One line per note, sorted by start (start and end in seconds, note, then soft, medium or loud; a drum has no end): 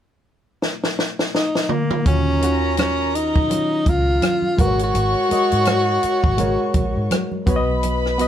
0.62 snare medium
0.84 snare medium
0.99 snare medium
1.19 snare medium
1.35 1.73 D#4 medium
1.35 snare medium
1.55 snare medium
1.69 2.06 A#3 medium
1.69 mid tom medium
1.91 mid tom medium
2.05 3.31 D#2 medium
2.05 2.33 D#3 medium
2.05 2.33 C#4 medium
2.05 2.74 C#4 medium
2.05 2.34 F4 medium
2.05 2.34 F#4 medium
2.05 4.19 A#4 medium
2.05 4.19 A#5 medium
2.05 kick loud
2.05 closed hi-hat medium
2.05 muted conga soft
2.41 3.19 D#3 medium
2.41 3.19 C#4 medium
2.41 3.20 F4 medium
2.41 3.20 F#4 medium
2.41 closed hi-hat medium
2.41 muted conga soft
2.77 3.16 C#4 medium
2.77 cross-stick medium
2.77 closed hi-hat medium
2.77 high conga medium
3.15 3.91 D#4 medium
3.15 closed hi-hat medium
3.36 kick medium
3.49 4.53 D#3 medium
3.49 4.54 F#3 medium
3.49 4.53 C#4 medium
3.49 4.54 F4 medium
3.49 closed hi-hat medium
3.49 muted conga soft
3.86 4.18 C#2 medium
3.86 4.62 F4 medium
3.86 kick medium
3.86 closed hi-hat medium
3.86 muted conga soft
3.86 low conga medium
4.22 cross-stick loud
4.22 closed hi-hat medium
4.22 high conga medium
4.42 high conga soft
4.57 4.91 G#1 medium
4.57 5.18 G#3 medium
4.57 5.19 F#4 medium
4.57 4.80 F#4 medium
4.57 5.19 A#4 medium
4.57 4.67 B4 medium
4.57 7.08 C#5 medium
4.57 7.08 C#6 loud
4.57 kick medium
4.57 closed hi-hat medium
4.57 high conga medium
4.67 5.23 C#5 medium
4.79 closed hi-hat soft
4.83 7.45 F#4 medium
4.94 5.13 G#1 medium
4.94 closed hi-hat medium
4.94 muted conga soft
5.29 6.07 G#3 medium
5.29 6.08 F#4 medium
5.29 6.08 A#4 medium
5.29 6.09 D#5 medium
5.29 muted fingered electric bass stroke soft
5.29 closed hi-hat medium
5.29 muted conga soft
5.52 5.97 G#2 medium
5.52 closed hi-hat soft
5.65 cross-stick medium
5.65 closed hi-hat medium
5.65 high conga medium
6.03 muted fingered electric bass stroke soft
6.03 closed hi-hat medium
6.24 6.56 G#1 medium
6.24 kick medium
6.38 7.42 G#3 medium
6.38 7.42 F#4 medium
6.38 7.42 A#4 medium
6.38 7.43 C#5 medium
6.38 closed hi-hat medium
6.38 muted conga soft
6.38 low conga medium
6.74 6.93 A#1 medium
6.74 kick medium
6.74 closed hi-hat medium
6.74 muted conga soft
6.74 low conga medium
6.96 7.09 G#2 medium
7.11 cross-stick loud
7.11 closed hi-hat medium
7.11 high conga medium
7.32 high conga soft
7.46 8.28 B1 medium
7.46 8.07 B3 medium
7.46 8.07 F#4 medium
7.46 8.28 B4 medium
7.46 8.08 B4 medium
7.46 7.56 C#5 medium
7.46 8.28 B5 medium
7.46 kick medium
7.46 closed hi-hat medium
7.46 high conga medium
7.56 8.12 D#5 medium
7.83 closed hi-hat medium
7.83 muted conga soft
8.06 cross-stick soft
8.18 8.28 B3 medium
8.18 8.28 F#4 medium
8.18 8.28 B4 medium
8.18 8.28 D#5 medium
8.18 closed hi-hat medium
8.18 muted conga soft